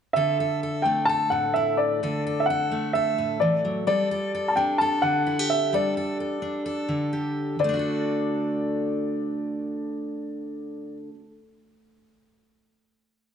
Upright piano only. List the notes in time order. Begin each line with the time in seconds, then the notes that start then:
0.13 E5
0.82 G5
1.05 A5
1.30 F#5
1.54 E5
1.77 D5
2.40 E5
2.46 F#5
2.93 E5
3.40 D5
3.87 D5
4.48 A5
4.56 G5
4.78 A5
5.02 F#5
5.50 E5
5.74 D5
7.60 D5